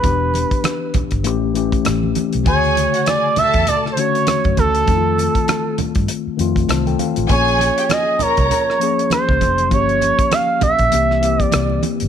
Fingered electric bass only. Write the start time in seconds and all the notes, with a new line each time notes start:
0.04 E1
0.95 muted fingered electric bass stroke
1.13 G1
1.26 A1
1.87 A1
2.35 B1
2.46 D2
3.38 muted fingered electric bass stroke
3.55 E2
4.46 F#2
4.58 D2
4.88 F2
5.79 muted fingered electric bass stroke
5.96 G2
6.27 muted fingered electric bass stroke
6.40 F2
6.70 C2
7.17 A1
7.30 A#1
8.21 muted fingered electric bass stroke
8.38 C2
9.29 C#2
9.42 F1
9.72 G1
10.62 muted fingered electric bass stroke
10.80 A#1
10.93 C2
11.54 C2
12.02 G1